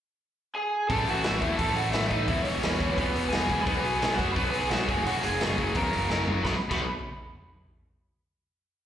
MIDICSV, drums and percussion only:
0, 0, Header, 1, 2, 480
1, 0, Start_track
1, 0, Tempo, 346220
1, 1256, Time_signature, 4, 2, 24, 8
1, 12277, End_track
2, 0, Start_track
2, 0, Title_t, "Drums"
2, 1245, Note_on_c, 9, 36, 106
2, 1248, Note_on_c, 9, 46, 75
2, 1384, Note_off_c, 9, 36, 0
2, 1387, Note_off_c, 9, 46, 0
2, 1486, Note_on_c, 9, 46, 53
2, 1625, Note_off_c, 9, 46, 0
2, 1718, Note_on_c, 9, 46, 74
2, 1726, Note_on_c, 9, 38, 108
2, 1857, Note_off_c, 9, 46, 0
2, 1865, Note_off_c, 9, 38, 0
2, 1965, Note_on_c, 9, 46, 57
2, 1967, Note_on_c, 9, 36, 83
2, 2103, Note_off_c, 9, 46, 0
2, 2106, Note_off_c, 9, 36, 0
2, 2200, Note_on_c, 9, 46, 85
2, 2208, Note_on_c, 9, 36, 102
2, 2339, Note_off_c, 9, 46, 0
2, 2347, Note_off_c, 9, 36, 0
2, 2449, Note_on_c, 9, 46, 57
2, 2588, Note_off_c, 9, 46, 0
2, 2678, Note_on_c, 9, 46, 72
2, 2686, Note_on_c, 9, 38, 101
2, 2816, Note_off_c, 9, 46, 0
2, 2825, Note_off_c, 9, 38, 0
2, 2917, Note_on_c, 9, 46, 57
2, 2923, Note_on_c, 9, 36, 81
2, 3056, Note_off_c, 9, 46, 0
2, 3062, Note_off_c, 9, 36, 0
2, 3159, Note_on_c, 9, 46, 77
2, 3165, Note_on_c, 9, 36, 106
2, 3297, Note_off_c, 9, 46, 0
2, 3304, Note_off_c, 9, 36, 0
2, 3393, Note_on_c, 9, 46, 56
2, 3532, Note_off_c, 9, 46, 0
2, 3647, Note_on_c, 9, 46, 76
2, 3655, Note_on_c, 9, 38, 109
2, 3786, Note_off_c, 9, 46, 0
2, 3794, Note_off_c, 9, 38, 0
2, 3887, Note_on_c, 9, 46, 52
2, 3888, Note_on_c, 9, 36, 86
2, 4025, Note_off_c, 9, 46, 0
2, 4026, Note_off_c, 9, 36, 0
2, 4130, Note_on_c, 9, 36, 110
2, 4135, Note_on_c, 9, 46, 75
2, 4269, Note_off_c, 9, 36, 0
2, 4274, Note_off_c, 9, 46, 0
2, 4377, Note_on_c, 9, 46, 58
2, 4516, Note_off_c, 9, 46, 0
2, 4607, Note_on_c, 9, 46, 72
2, 4616, Note_on_c, 9, 38, 108
2, 4746, Note_off_c, 9, 46, 0
2, 4754, Note_off_c, 9, 38, 0
2, 4846, Note_on_c, 9, 36, 76
2, 4846, Note_on_c, 9, 46, 51
2, 4985, Note_off_c, 9, 36, 0
2, 4985, Note_off_c, 9, 46, 0
2, 5084, Note_on_c, 9, 46, 70
2, 5086, Note_on_c, 9, 36, 112
2, 5223, Note_off_c, 9, 46, 0
2, 5225, Note_off_c, 9, 36, 0
2, 5332, Note_on_c, 9, 46, 55
2, 5471, Note_off_c, 9, 46, 0
2, 5577, Note_on_c, 9, 46, 81
2, 5585, Note_on_c, 9, 38, 114
2, 5715, Note_off_c, 9, 46, 0
2, 5723, Note_off_c, 9, 38, 0
2, 5810, Note_on_c, 9, 36, 86
2, 5818, Note_on_c, 9, 46, 54
2, 5949, Note_off_c, 9, 36, 0
2, 5957, Note_off_c, 9, 46, 0
2, 6045, Note_on_c, 9, 46, 79
2, 6050, Note_on_c, 9, 36, 112
2, 6184, Note_off_c, 9, 46, 0
2, 6188, Note_off_c, 9, 36, 0
2, 6289, Note_on_c, 9, 46, 64
2, 6427, Note_off_c, 9, 46, 0
2, 6530, Note_on_c, 9, 46, 75
2, 6538, Note_on_c, 9, 38, 107
2, 6668, Note_off_c, 9, 46, 0
2, 6676, Note_off_c, 9, 38, 0
2, 6773, Note_on_c, 9, 46, 59
2, 6774, Note_on_c, 9, 36, 93
2, 6912, Note_off_c, 9, 46, 0
2, 6913, Note_off_c, 9, 36, 0
2, 7022, Note_on_c, 9, 46, 77
2, 7160, Note_off_c, 9, 46, 0
2, 7254, Note_on_c, 9, 46, 56
2, 7392, Note_off_c, 9, 46, 0
2, 7497, Note_on_c, 9, 46, 78
2, 7505, Note_on_c, 9, 38, 105
2, 7636, Note_off_c, 9, 46, 0
2, 7644, Note_off_c, 9, 38, 0
2, 7733, Note_on_c, 9, 46, 56
2, 7738, Note_on_c, 9, 36, 79
2, 7872, Note_off_c, 9, 46, 0
2, 7877, Note_off_c, 9, 36, 0
2, 7968, Note_on_c, 9, 46, 77
2, 7979, Note_on_c, 9, 36, 116
2, 8106, Note_off_c, 9, 46, 0
2, 8118, Note_off_c, 9, 36, 0
2, 8221, Note_on_c, 9, 46, 57
2, 8360, Note_off_c, 9, 46, 0
2, 8458, Note_on_c, 9, 38, 62
2, 8596, Note_off_c, 9, 38, 0
2, 8698, Note_on_c, 9, 43, 80
2, 8837, Note_off_c, 9, 43, 0
2, 8940, Note_on_c, 9, 36, 99
2, 8945, Note_on_c, 9, 38, 83
2, 9078, Note_off_c, 9, 36, 0
2, 9083, Note_off_c, 9, 38, 0
2, 9302, Note_on_c, 9, 36, 102
2, 9304, Note_on_c, 9, 49, 91
2, 9441, Note_off_c, 9, 36, 0
2, 9442, Note_off_c, 9, 49, 0
2, 12277, End_track
0, 0, End_of_file